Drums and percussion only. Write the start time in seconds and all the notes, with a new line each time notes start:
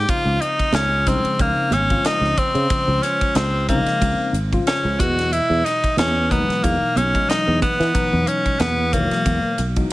0.07 kick, hi-hat pedal, ride, muted conga
0.40 hi-hat pedal, ride, muted conga
0.59 kick, ride
0.73 snare, hi-hat pedal, ride, high conga
1.07 kick, hi-hat pedal, ride
1.25 ride
1.38 kick, hi-hat pedal, ride, muted conga
1.71 hi-hat pedal, ride, high conga
1.90 kick, ride
2.05 snare, hi-hat pedal, ride
2.24 snare
2.37 kick, hi-hat pedal, ride, muted conga
2.55 ride
2.70 kick, hi-hat pedal, ride, muted conga
3.03 snare, hi-hat pedal, ride, muted conga
3.21 kick, ride
3.35 snare, hi-hat pedal, ride, high conga
3.69 kick, hi-hat pedal, ride
3.86 snare, ride
4.02 kick, hi-hat pedal, ride, muted conga
4.34 hi-hat pedal, ride
4.53 kick, ride
4.67 snare, hi-hat pedal, ride
4.99 kick, hi-hat pedal, ride, muted conga, high conga
5.19 snare, ride
5.32 hi-hat pedal, ride, muted conga
5.65 snare, hi-hat pedal, ride, muted conga
5.84 kick, ride
5.97 snare, hi-hat pedal, ride, high conga
6.31 kick, hi-hat pedal, ride
6.50 snare, ride
6.63 kick, hi-hat pedal, ride, muted conga
6.96 hi-hat pedal, ride, high conga
7.15 kick, ride
7.30 snare, hi-hat pedal, ride
7.62 kick, hi-hat pedal, ride, muted conga, high conga
7.80 snare, ride
7.95 kick, hi-hat pedal, ride, muted conga
8.27 hi-hat pedal, ride, muted conga
8.46 kick, ride
8.60 snare, hi-hat pedal, ride, high conga
8.93 kick, hi-hat pedal, ride
9.11 snare, ride
9.26 kick, hi-hat pedal, ride, muted conga
9.58 hi-hat pedal, ride
9.76 kick, ride